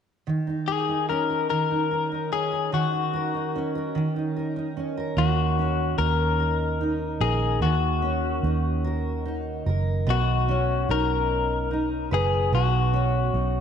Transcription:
0.27 1.50 D#3 soft
0.47 0.88 D#4 soft
0.68 1.06 G#4 medium
0.68 1.29 A#4 soft
0.89 1.71 D#4 soft
1.09 2.31 C#4 soft
1.09 1.47 A#4 medium
1.30 1.91 A#4 soft
1.50 2.72 D#3 soft
1.50 2.32 A#4 medium
1.71 2.11 D#4 soft
1.91 2.52 A#4 soft
2.12 2.93 D#4 soft
2.32 3.55 C#4 soft
2.32 2.70 G#4 medium
2.52 3.13 A#4 soft
2.72 3.95 D#3 medium
2.72 3.92 F#4 soft
2.93 3.34 D#4 soft
3.13 3.75 A#4 soft
3.34 4.16 D#4 soft
3.55 4.76 C#4 soft
3.75 4.36 A#4 soft
3.95 5.17 D#3 medium
4.16 4.56 D#4 soft
4.37 4.97 A#4 soft
4.56 5.62 D#4 soft
4.77 5.58 C#4 soft
4.97 6.39 A#4 soft
5.17 5.95 D#2 medium
5.17 7.61 D#3 medium
5.17 5.98 F#4 medium
5.59 8.02 C#4 soft
5.98 7.17 D#2 medium
5.98 6.80 D#4 soft
5.98 7.17 A#4 medium
6.40 7.20 A#4 soft
6.81 8.44 D#4 soft
7.20 7.59 A#1 medium
7.20 7.59 G#4 medium
7.20 8.83 A#4 medium
7.61 8.39 D#2 medium
7.61 10.51 D#3 medium
7.61 9.62 F#4 medium
8.02 10.48 C#4 soft
8.43 9.62 D#2 medium
8.43 9.25 D#4 soft
8.84 9.65 A#4 medium
9.26 10.51 D#4 soft
9.66 10.05 F#1 medium
9.66 10.15 A#4 soft
10.07 10.85 B1 medium
10.07 12.51 B2 medium
10.07 10.91 F#4 medium
10.48 12.93 C#4 soft
10.89 12.07 B1 medium
10.89 11.70 D#4 soft
10.89 12.08 A#4 medium
11.71 13.33 D#4 soft
12.11 12.50 F#1 medium
12.11 12.54 G#4 medium
12.11 13.61 B4 soft
12.52 13.30 B1 medium
12.52 13.61 B2 medium
12.52 13.61 F#4 medium
12.93 13.61 C#4 soft
13.34 13.61 B1 medium
13.34 13.61 D#4 soft

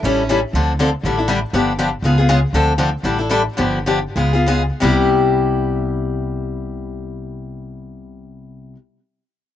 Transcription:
0.03 0.43 A1 medium
0.03 0.22 E3 medium
0.03 0.22 G3 medium
0.03 0.22 C#4 medium
0.03 0.22 E4 medium
0.03 0.22 A4 medium
0.29 0.39 E3 medium
0.29 0.39 G3 medium
0.29 0.39 C#4 medium
0.29 0.39 E4 medium
0.29 0.39 A4 medium
0.53 0.93 D2 medium
0.53 0.72 D3 medium
0.53 0.72 F3 medium
0.53 0.72 C4 medium
0.53 0.72 D4 medium
0.53 0.73 A4 medium
0.79 0.89 D3 medium
0.79 0.89 F3 medium
0.79 0.89 C4 medium
0.79 0.89 D4 medium
0.79 0.89 A4 medium
1.03 1.43 A1 medium
1.03 1.17 D3 medium
1.03 1.18 G3 medium
1.03 1.18 D4 medium
1.03 1.17 E4 medium
1.03 1.16 A4 medium
1.17 1.28 D4 soft
1.17 1.28 E4 soft
1.17 1.28 A4 soft
1.28 1.38 D3 medium
1.28 1.38 G3 medium
1.28 1.39 D4 medium
1.28 1.39 E4 medium
1.28 1.39 A4 medium
1.53 1.93 G1 medium
1.53 1.71 D3 medium
1.53 1.71 F3 medium
1.53 1.72 B3 medium
1.53 1.72 D4 medium
1.53 1.72 G4 medium
1.79 1.88 D3 medium
1.79 1.89 F3 medium
1.79 1.89 B3 medium
1.79 1.89 D4 medium
1.79 1.89 G4 medium
2.02 2.43 C#2 medium
2.02 2.17 C#3 medium
2.02 2.17 G#3 medium
2.02 2.18 B3 medium
2.02 2.18 F4 medium
2.02 2.17 G#4 medium
2.18 2.28 B3 soft
2.18 2.28 F4 soft
2.18 2.28 G#4 medium
2.29 2.39 C#3 medium
2.29 2.39 G#3 medium
2.29 2.39 B3 medium
2.29 2.39 F4 medium
2.29 2.39 G#4 medium
2.53 2.94 D2 medium
2.53 2.72 D3 medium
2.53 2.72 F3 medium
2.53 2.72 C4 medium
2.53 2.72 D4 medium
2.53 2.72 A4 medium
2.78 2.88 D3 medium
2.78 2.89 F3 medium
2.78 2.89 C4 medium
2.78 2.89 D4 medium
2.78 2.89 A4 medium
3.03 3.47 A1 medium
3.03 3.18 D3 medium
3.03 3.18 G3 medium
3.03 3.18 D4 medium
3.03 3.18 E4 medium
3.03 3.17 A4 medium
3.18 3.29 D4 soft
3.18 3.29 E4 soft
3.18 3.30 A4 soft
3.29 3.41 D3 medium
3.29 3.41 G3 medium
3.29 3.41 D4 medium
3.29 3.41 E4 medium
3.29 3.42 A4 medium
3.57 4.05 G1 medium
3.57 3.78 D3 medium
3.57 3.78 F3 medium
3.57 3.78 B3 medium
3.57 3.78 D4 medium
3.57 3.78 G4 medium
3.86 3.98 D3 medium
3.86 3.98 F3 medium
3.86 3.99 B3 medium
3.86 3.99 D4 medium
3.86 3.99 G4 medium
4.16 4.69 C#2 medium
4.16 4.33 C#3 medium
4.16 4.33 G#3 medium
4.16 4.33 B3 medium
4.16 4.33 F4 medium
4.16 4.32 G#4 medium
4.33 4.46 B3 soft
4.33 4.47 F4 soft
4.33 4.47 G#4 soft
4.46 4.61 C#3 medium
4.46 4.61 G#3 medium
4.46 4.61 B3 medium
4.46 4.62 F4 medium
4.46 4.62 G#4 medium
4.80 8.73 C2 medium
4.80 8.75 C3 medium
4.80 8.76 G3 medium
4.80 8.76 B3 medium
4.80 8.78 E4 medium
4.80 8.78 G4 medium

